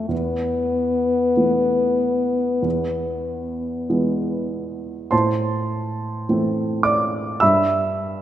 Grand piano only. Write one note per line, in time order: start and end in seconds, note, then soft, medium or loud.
0.00 0.14 E3 soft
0.00 0.14 A3 soft
0.00 0.14 E4 soft
0.09 1.33 E2 soft
1.37 2.60 E3 soft
1.37 2.60 A3 soft
1.37 2.61 B3 soft
2.62 3.85 E2 soft
3.90 5.08 E3 soft
3.90 5.09 G#3 soft
3.90 5.08 B3 soft
5.11 6.25 A2 soft
5.11 6.81 C5 medium
5.11 6.81 A5 medium
5.11 6.85 C6 medium
6.29 7.38 E3 soft
6.29 7.38 A3 soft
6.29 7.39 C4 soft
6.83 7.37 D5 medium
6.83 7.40 D6 medium
7.40 8.22 G2 soft
7.40 8.22 E5 medium
7.40 8.22 B5 medium
7.40 8.22 E6 medium